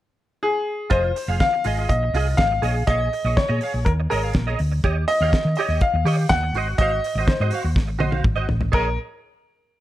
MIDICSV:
0, 0, Header, 1, 7, 480
1, 0, Start_track
1, 0, Key_signature, -5, "minor"
1, 0, Tempo, 488998
1, 893, Time_signature, 4, 2, 24, 8
1, 9621, End_track
2, 0, Start_track
2, 0, Title_t, "Grand piano"
2, 0, Program_c, 0, 0
2, 419, Note_on_c, 0, 68, 90
2, 895, Note_on_c, 0, 72, 99
2, 912, Note_off_c, 0, 68, 0
2, 1378, Note_on_c, 0, 77, 109
2, 1391, Note_off_c, 0, 72, 0
2, 1856, Note_on_c, 0, 75, 83
2, 1874, Note_off_c, 0, 77, 0
2, 2306, Note_off_c, 0, 75, 0
2, 2330, Note_on_c, 0, 77, 101
2, 2783, Note_off_c, 0, 77, 0
2, 2819, Note_on_c, 0, 75, 100
2, 3307, Note_on_c, 0, 73, 96
2, 3317, Note_off_c, 0, 75, 0
2, 3778, Note_on_c, 0, 70, 71
2, 3801, Note_off_c, 0, 73, 0
2, 3833, Note_off_c, 0, 70, 0
2, 4025, Note_on_c, 0, 70, 78
2, 4473, Note_off_c, 0, 70, 0
2, 4984, Note_on_c, 0, 75, 110
2, 5452, Note_off_c, 0, 75, 0
2, 5466, Note_on_c, 0, 75, 87
2, 5690, Note_off_c, 0, 75, 0
2, 5711, Note_on_c, 0, 77, 84
2, 6178, Note_on_c, 0, 78, 121
2, 6202, Note_off_c, 0, 77, 0
2, 6627, Note_off_c, 0, 78, 0
2, 6657, Note_on_c, 0, 75, 114
2, 7138, Note_on_c, 0, 72, 80
2, 7153, Note_off_c, 0, 75, 0
2, 7584, Note_off_c, 0, 72, 0
2, 8581, Note_on_c, 0, 70, 96
2, 8800, Note_off_c, 0, 70, 0
2, 9621, End_track
3, 0, Start_track
3, 0, Title_t, "Clean electric guitar"
3, 0, Program_c, 1, 27
3, 883, Note_on_c, 1, 65, 97
3, 893, Note_on_c, 1, 68, 92
3, 900, Note_on_c, 1, 75, 92
3, 1004, Note_off_c, 1, 75, 0
3, 1013, Note_off_c, 1, 68, 0
3, 1081, Note_off_c, 1, 65, 0
3, 1262, Note_on_c, 1, 77, 50
3, 1275, Note_on_c, 1, 68, 53
3, 1283, Note_on_c, 1, 65, 49
3, 1376, Note_off_c, 1, 65, 0
3, 1384, Note_off_c, 1, 68, 0
3, 1398, Note_off_c, 1, 77, 0
3, 1616, Note_on_c, 1, 65, 79
3, 1627, Note_on_c, 1, 68, 86
3, 1638, Note_on_c, 1, 75, 83
3, 1735, Note_off_c, 1, 75, 0
3, 1747, Note_on_c, 1, 75, 58
3, 1749, Note_off_c, 1, 68, 0
3, 1755, Note_off_c, 1, 65, 0
3, 1760, Note_on_c, 1, 68, 53
3, 1767, Note_on_c, 1, 65, 47
3, 1870, Note_off_c, 1, 65, 0
3, 1876, Note_off_c, 1, 68, 0
3, 1880, Note_off_c, 1, 75, 0
3, 2106, Note_on_c, 1, 65, 80
3, 2117, Note_on_c, 1, 68, 79
3, 2126, Note_on_c, 1, 75, 81
3, 2219, Note_off_c, 1, 75, 0
3, 2229, Note_off_c, 1, 68, 0
3, 2296, Note_off_c, 1, 65, 0
3, 2573, Note_on_c, 1, 68, 83
3, 2584, Note_on_c, 1, 73, 74
3, 2595, Note_on_c, 1, 75, 89
3, 2693, Note_off_c, 1, 75, 0
3, 2704, Note_off_c, 1, 73, 0
3, 2770, Note_off_c, 1, 68, 0
3, 2823, Note_on_c, 1, 68, 90
3, 2834, Note_on_c, 1, 73, 89
3, 2841, Note_on_c, 1, 77, 84
3, 2937, Note_off_c, 1, 77, 0
3, 2947, Note_off_c, 1, 73, 0
3, 3016, Note_off_c, 1, 68, 0
3, 3191, Note_on_c, 1, 75, 64
3, 3203, Note_on_c, 1, 73, 53
3, 3209, Note_on_c, 1, 68, 51
3, 3296, Note_off_c, 1, 68, 0
3, 3302, Note_off_c, 1, 73, 0
3, 3306, Note_off_c, 1, 75, 0
3, 3422, Note_on_c, 1, 75, 80
3, 3431, Note_on_c, 1, 73, 75
3, 3443, Note_on_c, 1, 68, 67
3, 3537, Note_off_c, 1, 68, 0
3, 3549, Note_on_c, 1, 68, 59
3, 3552, Note_off_c, 1, 73, 0
3, 3560, Note_off_c, 1, 75, 0
3, 3564, Note_on_c, 1, 73, 61
3, 3564, Note_on_c, 1, 77, 66
3, 3664, Note_off_c, 1, 77, 0
3, 3671, Note_off_c, 1, 73, 0
3, 3709, Note_off_c, 1, 68, 0
3, 4025, Note_on_c, 1, 68, 84
3, 4038, Note_on_c, 1, 73, 100
3, 4046, Note_on_c, 1, 75, 102
3, 4149, Note_off_c, 1, 73, 0
3, 4153, Note_off_c, 1, 75, 0
3, 4157, Note_on_c, 1, 77, 55
3, 4161, Note_off_c, 1, 68, 0
3, 4161, Note_on_c, 1, 73, 53
3, 4172, Note_on_c, 1, 68, 50
3, 4262, Note_off_c, 1, 68, 0
3, 4269, Note_off_c, 1, 73, 0
3, 4283, Note_off_c, 1, 77, 0
3, 4387, Note_on_c, 1, 75, 82
3, 4394, Note_on_c, 1, 73, 74
3, 4406, Note_on_c, 1, 68, 64
3, 4500, Note_off_c, 1, 68, 0
3, 4509, Note_off_c, 1, 73, 0
3, 4518, Note_off_c, 1, 75, 0
3, 4751, Note_on_c, 1, 67, 92
3, 4754, Note_on_c, 1, 73, 87
3, 4763, Note_on_c, 1, 75, 88
3, 4867, Note_off_c, 1, 75, 0
3, 4879, Note_off_c, 1, 73, 0
3, 4941, Note_off_c, 1, 67, 0
3, 5121, Note_on_c, 1, 77, 59
3, 5128, Note_on_c, 1, 73, 56
3, 5135, Note_on_c, 1, 67, 52
3, 5231, Note_off_c, 1, 67, 0
3, 5237, Note_off_c, 1, 73, 0
3, 5255, Note_off_c, 1, 77, 0
3, 5483, Note_on_c, 1, 67, 86
3, 5495, Note_on_c, 1, 73, 106
3, 5499, Note_on_c, 1, 75, 95
3, 5585, Note_off_c, 1, 75, 0
3, 5596, Note_on_c, 1, 75, 71
3, 5597, Note_off_c, 1, 73, 0
3, 5602, Note_off_c, 1, 67, 0
3, 5609, Note_on_c, 1, 73, 59
3, 5614, Note_on_c, 1, 67, 60
3, 5697, Note_off_c, 1, 67, 0
3, 5706, Note_off_c, 1, 73, 0
3, 5712, Note_off_c, 1, 75, 0
3, 5943, Note_on_c, 1, 67, 79
3, 5954, Note_on_c, 1, 73, 94
3, 5963, Note_on_c, 1, 75, 97
3, 6046, Note_off_c, 1, 75, 0
3, 6056, Note_off_c, 1, 73, 0
3, 6136, Note_off_c, 1, 67, 0
3, 6432, Note_on_c, 1, 66, 82
3, 6445, Note_on_c, 1, 72, 84
3, 6452, Note_on_c, 1, 75, 91
3, 6552, Note_off_c, 1, 75, 0
3, 6563, Note_off_c, 1, 72, 0
3, 6620, Note_off_c, 1, 66, 0
3, 6678, Note_on_c, 1, 66, 95
3, 6683, Note_on_c, 1, 72, 99
3, 6693, Note_on_c, 1, 77, 107
3, 6801, Note_off_c, 1, 77, 0
3, 6804, Note_off_c, 1, 72, 0
3, 6862, Note_off_c, 1, 66, 0
3, 7046, Note_on_c, 1, 75, 64
3, 7059, Note_on_c, 1, 72, 64
3, 7069, Note_on_c, 1, 66, 49
3, 7151, Note_off_c, 1, 66, 0
3, 7163, Note_off_c, 1, 72, 0
3, 7172, Note_off_c, 1, 75, 0
3, 7275, Note_on_c, 1, 75, 75
3, 7279, Note_on_c, 1, 72, 70
3, 7293, Note_on_c, 1, 66, 61
3, 7373, Note_off_c, 1, 66, 0
3, 7382, Note_off_c, 1, 72, 0
3, 7385, Note_on_c, 1, 66, 70
3, 7393, Note_on_c, 1, 72, 66
3, 7399, Note_off_c, 1, 75, 0
3, 7403, Note_on_c, 1, 77, 76
3, 7500, Note_off_c, 1, 77, 0
3, 7505, Note_off_c, 1, 72, 0
3, 7544, Note_off_c, 1, 66, 0
3, 7840, Note_on_c, 1, 66, 80
3, 7850, Note_on_c, 1, 72, 84
3, 7856, Note_on_c, 1, 75, 90
3, 7954, Note_off_c, 1, 75, 0
3, 7958, Note_on_c, 1, 77, 62
3, 7961, Note_off_c, 1, 72, 0
3, 7970, Note_off_c, 1, 66, 0
3, 7973, Note_on_c, 1, 72, 56
3, 7982, Note_on_c, 1, 66, 50
3, 8083, Note_off_c, 1, 66, 0
3, 8091, Note_off_c, 1, 72, 0
3, 8102, Note_off_c, 1, 77, 0
3, 8203, Note_on_c, 1, 75, 78
3, 8210, Note_on_c, 1, 72, 63
3, 8219, Note_on_c, 1, 66, 70
3, 8306, Note_off_c, 1, 66, 0
3, 8316, Note_off_c, 1, 72, 0
3, 8320, Note_off_c, 1, 75, 0
3, 8558, Note_on_c, 1, 68, 87
3, 8565, Note_on_c, 1, 73, 94
3, 8571, Note_on_c, 1, 75, 85
3, 8710, Note_off_c, 1, 68, 0
3, 8713, Note_off_c, 1, 73, 0
3, 8717, Note_off_c, 1, 75, 0
3, 9621, End_track
4, 0, Start_track
4, 0, Title_t, "Fingered electric bass"
4, 0, Program_c, 2, 33
4, 895, Note_on_c, 2, 29, 92
4, 1089, Note_off_c, 2, 29, 0
4, 1256, Note_on_c, 2, 29, 92
4, 1353, Note_off_c, 2, 29, 0
4, 1623, Note_on_c, 2, 32, 80
4, 1816, Note_off_c, 2, 32, 0
4, 1857, Note_on_c, 2, 34, 88
4, 2053, Note_off_c, 2, 34, 0
4, 2096, Note_on_c, 2, 36, 88
4, 2293, Note_off_c, 2, 36, 0
4, 2340, Note_on_c, 2, 32, 100
4, 2535, Note_off_c, 2, 32, 0
4, 2574, Note_on_c, 2, 34, 88
4, 2772, Note_off_c, 2, 34, 0
4, 2823, Note_on_c, 2, 34, 100
4, 3018, Note_off_c, 2, 34, 0
4, 3185, Note_on_c, 2, 34, 89
4, 3282, Note_off_c, 2, 34, 0
4, 3429, Note_on_c, 2, 46, 81
4, 3525, Note_off_c, 2, 46, 0
4, 3671, Note_on_c, 2, 34, 88
4, 3766, Note_off_c, 2, 34, 0
4, 3789, Note_on_c, 2, 39, 106
4, 3983, Note_off_c, 2, 39, 0
4, 4043, Note_on_c, 2, 32, 81
4, 4230, Note_off_c, 2, 32, 0
4, 4267, Note_on_c, 2, 34, 90
4, 4462, Note_off_c, 2, 34, 0
4, 4514, Note_on_c, 2, 38, 83
4, 4706, Note_off_c, 2, 38, 0
4, 4750, Note_on_c, 2, 39, 87
4, 4943, Note_off_c, 2, 39, 0
4, 5110, Note_on_c, 2, 39, 101
4, 5206, Note_off_c, 2, 39, 0
4, 5348, Note_on_c, 2, 51, 77
4, 5444, Note_off_c, 2, 51, 0
4, 5580, Note_on_c, 2, 39, 83
4, 5680, Note_off_c, 2, 39, 0
4, 5826, Note_on_c, 2, 39, 88
4, 5923, Note_off_c, 2, 39, 0
4, 5936, Note_on_c, 2, 51, 100
4, 6134, Note_off_c, 2, 51, 0
4, 6182, Note_on_c, 2, 39, 85
4, 6377, Note_off_c, 2, 39, 0
4, 6410, Note_on_c, 2, 32, 93
4, 6610, Note_off_c, 2, 32, 0
4, 6662, Note_on_c, 2, 32, 101
4, 6856, Note_off_c, 2, 32, 0
4, 7020, Note_on_c, 2, 32, 106
4, 7118, Note_off_c, 2, 32, 0
4, 7266, Note_on_c, 2, 44, 83
4, 7361, Note_off_c, 2, 44, 0
4, 7502, Note_on_c, 2, 39, 83
4, 7598, Note_off_c, 2, 39, 0
4, 7617, Note_on_c, 2, 32, 104
4, 7856, Note_off_c, 2, 32, 0
4, 7856, Note_on_c, 2, 34, 91
4, 8050, Note_off_c, 2, 34, 0
4, 8097, Note_on_c, 2, 32, 96
4, 8290, Note_off_c, 2, 32, 0
4, 8328, Note_on_c, 2, 33, 76
4, 8525, Note_off_c, 2, 33, 0
4, 8574, Note_on_c, 2, 34, 89
4, 8797, Note_off_c, 2, 34, 0
4, 9621, End_track
5, 0, Start_track
5, 0, Title_t, "Muted clean electric guitar strokes"
5, 1016, Note_on_c, 9, 29, 41
5, 1114, Note_off_c, 9, 29, 0
5, 1135, Note_on_c, 9, 29, 46
5, 1233, Note_off_c, 9, 29, 0
5, 1388, Note_on_c, 9, 29, 44
5, 1486, Note_off_c, 9, 29, 0
5, 1502, Note_on_c, 9, 29, 43
5, 1600, Note_off_c, 9, 29, 0
5, 1992, Note_on_c, 9, 29, 41
5, 2090, Note_off_c, 9, 29, 0
5, 2230, Note_on_c, 9, 29, 43
5, 2329, Note_off_c, 9, 29, 0
5, 2350, Note_on_c, 9, 29, 44
5, 2448, Note_off_c, 9, 29, 0
5, 2472, Note_on_c, 9, 29, 46
5, 2571, Note_off_c, 9, 29, 0
5, 2705, Note_on_c, 9, 29, 48
5, 2803, Note_off_c, 9, 29, 0
5, 2941, Note_on_c, 9, 29, 46
5, 3039, Note_off_c, 9, 29, 0
5, 3070, Note_on_c, 9, 29, 43
5, 3168, Note_off_c, 9, 29, 0
5, 3308, Note_on_c, 9, 29, 38
5, 3406, Note_off_c, 9, 29, 0
5, 3668, Note_on_c, 9, 29, 46
5, 3766, Note_off_c, 9, 29, 0
5, 3786, Note_on_c, 9, 29, 49
5, 3884, Note_off_c, 9, 29, 0
5, 3923, Note_on_c, 9, 29, 54
5, 4021, Note_off_c, 9, 29, 0
5, 4512, Note_on_c, 9, 29, 41
5, 4610, Note_off_c, 9, 29, 0
5, 4629, Note_on_c, 9, 29, 43
5, 4727, Note_off_c, 9, 29, 0
5, 4879, Note_on_c, 9, 29, 40
5, 4977, Note_off_c, 9, 29, 0
5, 4985, Note_on_c, 9, 29, 39
5, 5084, Note_off_c, 9, 29, 0
5, 5243, Note_on_c, 9, 29, 42
5, 5341, Note_off_c, 9, 29, 0
5, 5372, Note_on_c, 9, 29, 43
5, 5470, Note_off_c, 9, 29, 0
5, 5709, Note_on_c, 9, 29, 59
5, 5807, Note_off_c, 9, 29, 0
5, 5840, Note_on_c, 9, 29, 42
5, 5938, Note_off_c, 9, 29, 0
5, 6058, Note_on_c, 9, 29, 40
5, 6156, Note_off_c, 9, 29, 0
5, 6193, Note_on_c, 9, 29, 45
5, 6291, Note_off_c, 9, 29, 0
5, 6312, Note_on_c, 9, 29, 49
5, 6410, Note_off_c, 9, 29, 0
5, 6564, Note_on_c, 9, 29, 48
5, 6662, Note_off_c, 9, 29, 0
5, 6805, Note_on_c, 9, 29, 42
5, 6903, Note_off_c, 9, 29, 0
5, 6923, Note_on_c, 9, 29, 42
5, 7021, Note_off_c, 9, 29, 0
5, 7174, Note_on_c, 9, 29, 41
5, 7272, Note_off_c, 9, 29, 0
5, 7504, Note_on_c, 9, 29, 50
5, 7602, Note_off_c, 9, 29, 0
5, 7610, Note_on_c, 9, 29, 44
5, 7708, Note_off_c, 9, 29, 0
5, 7732, Note_on_c, 9, 29, 39
5, 7830, Note_off_c, 9, 29, 0
5, 8095, Note_on_c, 9, 29, 39
5, 8193, Note_off_c, 9, 29, 0
5, 8318, Note_on_c, 9, 29, 46
5, 8416, Note_off_c, 9, 29, 0
5, 8448, Note_on_c, 9, 29, 50
5, 8546, Note_off_c, 9, 29, 0
5, 9621, End_track
6, 0, Start_track
6, 0, Title_t, "Muted fingered electric bass strokes"
6, 7138, Note_on_c, 9, 29, 46
6, 7236, Note_off_c, 9, 29, 0
6, 9621, End_track
7, 0, Start_track
7, 0, Title_t, "Drums"
7, 887, Note_on_c, 9, 42, 61
7, 892, Note_on_c, 9, 36, 98
7, 985, Note_off_c, 9, 42, 0
7, 990, Note_off_c, 9, 36, 0
7, 1140, Note_on_c, 9, 46, 62
7, 1239, Note_off_c, 9, 46, 0
7, 1376, Note_on_c, 9, 42, 61
7, 1377, Note_on_c, 9, 36, 112
7, 1380, Note_on_c, 9, 38, 100
7, 1474, Note_off_c, 9, 42, 0
7, 1475, Note_off_c, 9, 36, 0
7, 1478, Note_off_c, 9, 38, 0
7, 1611, Note_on_c, 9, 46, 64
7, 1709, Note_off_c, 9, 46, 0
7, 1860, Note_on_c, 9, 36, 107
7, 1861, Note_on_c, 9, 42, 60
7, 1958, Note_off_c, 9, 36, 0
7, 1959, Note_off_c, 9, 42, 0
7, 2104, Note_on_c, 9, 46, 73
7, 2203, Note_off_c, 9, 46, 0
7, 2333, Note_on_c, 9, 42, 59
7, 2339, Note_on_c, 9, 36, 112
7, 2346, Note_on_c, 9, 38, 106
7, 2432, Note_off_c, 9, 42, 0
7, 2438, Note_off_c, 9, 36, 0
7, 2444, Note_off_c, 9, 38, 0
7, 2580, Note_on_c, 9, 46, 54
7, 2678, Note_off_c, 9, 46, 0
7, 2819, Note_on_c, 9, 42, 64
7, 2822, Note_on_c, 9, 36, 99
7, 2917, Note_off_c, 9, 42, 0
7, 2920, Note_off_c, 9, 36, 0
7, 3073, Note_on_c, 9, 46, 56
7, 3172, Note_off_c, 9, 46, 0
7, 3308, Note_on_c, 9, 36, 117
7, 3309, Note_on_c, 9, 42, 60
7, 3312, Note_on_c, 9, 38, 92
7, 3407, Note_off_c, 9, 36, 0
7, 3407, Note_off_c, 9, 42, 0
7, 3411, Note_off_c, 9, 38, 0
7, 3541, Note_on_c, 9, 46, 62
7, 3639, Note_off_c, 9, 46, 0
7, 3790, Note_on_c, 9, 36, 106
7, 3790, Note_on_c, 9, 42, 65
7, 3888, Note_off_c, 9, 36, 0
7, 3888, Note_off_c, 9, 42, 0
7, 4036, Note_on_c, 9, 46, 67
7, 4134, Note_off_c, 9, 46, 0
7, 4254, Note_on_c, 9, 42, 58
7, 4267, Note_on_c, 9, 38, 109
7, 4268, Note_on_c, 9, 36, 106
7, 4353, Note_off_c, 9, 42, 0
7, 4365, Note_off_c, 9, 38, 0
7, 4366, Note_off_c, 9, 36, 0
7, 4503, Note_on_c, 9, 46, 52
7, 4601, Note_off_c, 9, 46, 0
7, 4750, Note_on_c, 9, 36, 102
7, 4750, Note_on_c, 9, 42, 59
7, 4848, Note_off_c, 9, 36, 0
7, 4848, Note_off_c, 9, 42, 0
7, 4992, Note_on_c, 9, 46, 59
7, 5090, Note_off_c, 9, 46, 0
7, 5231, Note_on_c, 9, 36, 116
7, 5234, Note_on_c, 9, 42, 63
7, 5238, Note_on_c, 9, 38, 100
7, 5329, Note_off_c, 9, 36, 0
7, 5332, Note_off_c, 9, 42, 0
7, 5336, Note_off_c, 9, 38, 0
7, 5453, Note_on_c, 9, 46, 63
7, 5551, Note_off_c, 9, 46, 0
7, 5701, Note_on_c, 9, 42, 64
7, 5707, Note_on_c, 9, 36, 110
7, 5799, Note_off_c, 9, 42, 0
7, 5805, Note_off_c, 9, 36, 0
7, 5951, Note_on_c, 9, 46, 75
7, 6049, Note_off_c, 9, 46, 0
7, 6174, Note_on_c, 9, 42, 54
7, 6183, Note_on_c, 9, 36, 112
7, 6186, Note_on_c, 9, 38, 106
7, 6272, Note_off_c, 9, 42, 0
7, 6281, Note_off_c, 9, 36, 0
7, 6284, Note_off_c, 9, 38, 0
7, 6423, Note_on_c, 9, 46, 46
7, 6522, Note_off_c, 9, 46, 0
7, 6659, Note_on_c, 9, 42, 64
7, 6661, Note_on_c, 9, 36, 109
7, 6757, Note_off_c, 9, 42, 0
7, 6760, Note_off_c, 9, 36, 0
7, 6912, Note_on_c, 9, 46, 65
7, 7010, Note_off_c, 9, 46, 0
7, 7142, Note_on_c, 9, 36, 113
7, 7146, Note_on_c, 9, 42, 66
7, 7149, Note_on_c, 9, 38, 101
7, 7240, Note_off_c, 9, 36, 0
7, 7244, Note_off_c, 9, 42, 0
7, 7248, Note_off_c, 9, 38, 0
7, 7368, Note_on_c, 9, 46, 67
7, 7466, Note_off_c, 9, 46, 0
7, 7618, Note_on_c, 9, 36, 118
7, 7625, Note_on_c, 9, 38, 55
7, 7716, Note_off_c, 9, 36, 0
7, 7723, Note_off_c, 9, 38, 0
7, 7855, Note_on_c, 9, 48, 74
7, 7953, Note_off_c, 9, 48, 0
7, 7974, Note_on_c, 9, 48, 71
7, 8072, Note_off_c, 9, 48, 0
7, 8092, Note_on_c, 9, 36, 108
7, 8098, Note_on_c, 9, 47, 90
7, 8191, Note_off_c, 9, 36, 0
7, 8196, Note_off_c, 9, 47, 0
7, 8332, Note_on_c, 9, 43, 89
7, 8430, Note_off_c, 9, 43, 0
7, 8448, Note_on_c, 9, 43, 93
7, 8546, Note_off_c, 9, 43, 0
7, 8568, Note_on_c, 9, 49, 75
7, 8572, Note_on_c, 9, 36, 101
7, 8666, Note_off_c, 9, 49, 0
7, 8670, Note_off_c, 9, 36, 0
7, 9621, End_track
0, 0, End_of_file